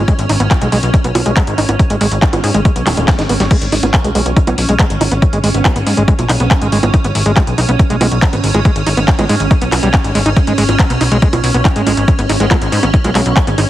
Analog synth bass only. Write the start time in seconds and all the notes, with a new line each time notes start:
0.19 G#1
0.29 G#1
0.40 G#1
0.62 B1
0.72 B1
0.83 B1
1.04 B1
1.15 B1
1.26 B1
1.47 G#1
1.58 G#1
1.69 G#1
1.90 G#1
2.01 G#1
2.12 G#1
2.33 G#1
2.44 G#2
2.54 G#1
2.76 B1
2.87 D#1
2.97 D#1
3.19 G#1
3.29 G#1
3.40 G#1
3.61 G#1
3.72 G#1
3.83 G#1
4.04 B1
4.15 B1
4.26 B1
4.47 B1
4.58 B1
4.69 B1
4.90 G#1
5.01 G#1
5.12 G#1
5.33 G#1
5.44 G#1
5.54 G#1
5.76 G#1
5.87 G#2
5.97 G#1
6.19 B1
6.29 B1
6.40 B1
6.62 G#1
6.72 G#1
6.83 G#1
7.04 G#1
7.15 G#1
7.26 G#1
7.47 B1
7.58 B1
7.69 B1
7.90 B1
8.01 B1
8.12 B1
8.33 G#1
8.44 G#1
8.54 G#1
8.76 G#1
8.87 G#1
8.97 G#1
9.19 G#1
9.29 G#2
9.40 G#1
9.62 B1
9.72 B1
9.83 B1
10.04 G#1
10.15 G#1
10.26 G#1
10.47 G#1
10.58 G#1
10.69 G#1
10.90 B1
11.01 B1
11.12 B1
11.33 B1
11.44 B1
11.54 B1
11.76 G#1
11.87 G#1
11.97 G#1
12.19 G#1
12.29 G#1
12.40 G#1
12.62 G#1
12.72 G#2
12.83 G#1
13.04 B1
13.15 B1
13.26 B1
13.47 G#1
13.58 G#1